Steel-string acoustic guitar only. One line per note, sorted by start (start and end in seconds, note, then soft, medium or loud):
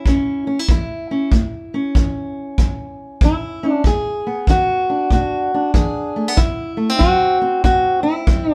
0.00 0.47 E4 soft
0.07 0.65 E2 medium
0.07 0.46 C#4 soft
0.47 0.59 C#4 soft
0.59 0.70 E4 soft
0.70 1.28 E3 medium
0.70 3.24 E4 medium
1.11 1.30 C#4 soft
1.33 1.91 A2 medium
1.74 3.62 C#4 soft
1.96 2.54 E3 medium
2.60 3.17 E2 medium
3.23 3.81 E3 medium
3.23 3.71 E4 medium
3.63 3.83 C#4 soft
3.71 3.86 D4 medium
3.86 4.44 E2 medium
3.86 4.49 G#4 medium
4.27 6.15 B3 soft
4.49 5.07 E3 medium
4.49 5.12 F#4 medium
4.90 5.52 D4 soft
5.12 5.70 B2 medium
5.12 5.74 F#4 medium
5.54 6.37 D4 soft
5.75 6.34 E3 medium
5.75 6.37 G#4 medium
6.16 6.28 A3 soft
6.28 6.39 B3 soft
6.37 6.96 D3 medium
6.37 6.98 E4 medium
6.77 6.90 A3 soft
6.90 7.40 C4 soft
6.99 7.60 F#3 medium
6.99 7.63 F#4 loud
7.42 8.26 C4 soft
7.64 8.23 A2 medium
7.64 8.03 F#4 loud
8.03 8.52 E4 medium
8.27 8.54 F#3 medium
8.27 8.54 C4 soft
8.52 8.54 D4 medium